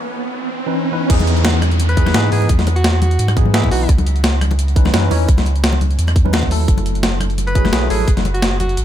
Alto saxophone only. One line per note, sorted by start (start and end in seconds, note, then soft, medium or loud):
1.89 2.31 B4 medium
2.32 2.53 G#4 medium
2.76 2.97 F#4 loud
3.02 3.37 F#4 medium
3.54 3.70 E4 medium
3.71 3.93 F#4 medium
7.47 7.89 B4 loud
7.90 8.12 G#4 medium
8.34 8.55 F#4 medium
8.60 8.81 F#4 loud